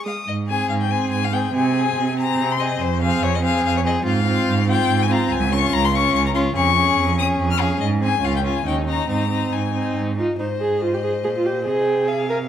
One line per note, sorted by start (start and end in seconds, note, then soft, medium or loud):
0.06 0.14 G#3 soft
0.06 0.15 F5 soft
0.06 0.27 D#6 soft
0.27 0.65 G#2 medium
0.27 0.36 D#5 medium
0.48 0.90 C4 soft
0.48 0.90 G#4 soft
0.48 0.68 G#5 medium
0.69 1.07 G#2 medium
0.69 0.73 F5 medium
0.81 0.92 G5 medium
0.90 1.32 C4 medium
0.90 1.32 G#4 soft
0.90 1.11 G#5 medium
1.12 1.49 G#2 medium
1.12 1.26 G#5 medium
1.24 1.34 F5 medium
1.32 1.53 C4 soft
1.32 1.53 G#4 soft
1.32 1.54 G5 medium
1.53 1.91 C3 medium
1.53 1.74 C4 medium
1.53 1.73 G#4 soft
1.53 2.17 G#5 medium
1.74 2.16 C4 soft
1.74 2.16 G#4 soft
1.96 2.34 C3 medium
2.16 2.58 C4 medium
2.16 2.59 G#4 medium
2.16 2.53 A#5 medium
2.38 2.76 C3 medium
2.51 2.61 C6 medium
2.59 2.80 C4 soft
2.59 2.80 G#4 soft
2.59 2.83 D#5 medium
2.80 3.17 F2 medium
2.80 3.01 C5 medium
3.01 3.41 C4 medium
3.01 3.42 G#4 medium
3.01 3.25 F5 medium
3.22 3.59 F2 medium
3.22 3.36 C#5 medium
3.35 3.43 D#5 medium
3.42 3.84 C4 medium
3.42 3.84 G#4 medium
3.42 3.64 F5 medium
3.64 4.01 F2 medium
3.64 3.75 F5 medium
3.77 3.81 C#5 medium
3.84 4.04 C4 medium
3.84 4.05 G#4 medium
3.84 3.94 D#5 medium
4.04 4.43 G#2 medium
4.04 4.26 C4 medium
4.04 4.24 F4 medium
4.04 4.68 F5 loud
4.25 4.66 C4 medium
4.25 4.67 F4 medium
4.48 4.85 G#2 medium
4.67 5.09 C4 medium
4.67 5.09 F4 medium
4.67 5.04 G5 loud
4.90 5.27 G#2 medium
5.02 5.13 G#5 medium
5.10 5.31 C4 medium
5.10 5.30 F4 medium
5.10 5.33 A#5 medium
5.32 5.69 C#2 medium
5.32 5.54 G#5 medium
5.52 5.93 C#4 medium
5.52 5.92 F4 medium
5.52 5.75 C#6 loud
5.73 6.10 C#2 medium
5.73 5.86 A#5 loud
5.85 5.97 C6 medium
5.93 6.34 C#4 medium
5.93 6.33 F4 medium
5.93 6.14 C#6 loud
6.14 6.51 C#2 medium
6.14 6.25 C#6 medium
6.26 6.30 A#5 medium
6.34 6.55 C#4 medium
6.34 6.55 F4 medium
6.34 6.43 C6 medium
6.55 6.93 F2 medium
6.55 6.75 C#4 medium
6.55 6.76 G#4 medium
6.55 7.17 C#6 loud
6.75 7.17 C#4 medium
6.75 7.17 G#4 medium
6.97 7.34 F2 medium
7.17 7.58 C#4 medium
7.17 7.59 G#4 medium
7.17 7.27 D#6 medium
7.39 7.76 F2 medium
7.51 7.62 F6 medium
7.59 7.80 C#4 medium
7.59 7.80 G#4 medium
7.59 7.80 F5 medium
7.80 8.18 G#2 medium
7.80 7.88 D#5 medium
8.01 8.21 C4 medium
8.01 8.22 G#4 medium
8.01 8.26 G#5 medium
8.21 8.61 C#2 medium
8.21 8.43 C#4 medium
8.21 8.44 F4 medium
8.21 8.35 F5 medium
8.36 8.40 G5 medium
8.43 8.65 C#4 soft
8.43 8.65 F4 soft
8.43 8.66 G#5 medium
8.66 9.04 D#2 medium
8.66 8.86 C#4 soft
8.66 8.86 D#4 soft
8.66 8.75 G5 medium
8.86 9.08 C#4 soft
8.86 9.08 D#4 medium
8.86 9.09 A#5 medium
9.08 9.47 G#2 medium
9.08 9.30 C4 soft
9.08 9.29 D#4 soft
9.08 9.54 A#5 medium
9.30 9.73 C4 soft
9.30 9.73 D#4 soft
9.52 9.91 G#2 medium
9.52 9.95 G#5 medium
9.74 10.16 C4 soft
9.74 10.16 D#4 soft
9.96 10.34 G#2 medium
10.17 10.38 D#4 soft
10.17 10.26 F4 medium
10.38 11.26 G#2 soft
10.38 10.47 D#4 soft
10.38 10.79 C5 soft
10.38 11.62 D#5 soft
10.61 10.83 G#4 medium
10.81 10.95 F4 medium
10.81 12.10 C5 soft
10.93 11.03 G4 soft
11.03 11.11 G#4 medium
11.24 11.68 A#2 soft
11.24 11.28 G#4 medium
11.37 11.47 F4 soft
11.45 11.65 G4 soft
11.65 12.48 C3 soft
11.65 12.28 G#4 medium
11.65 11.87 D#5 soft
11.85 12.10 G5 soft
12.08 12.48 F5 soft
12.08 12.29 G#5 soft
12.29 12.38 A#4 medium
12.29 12.37 G#5 soft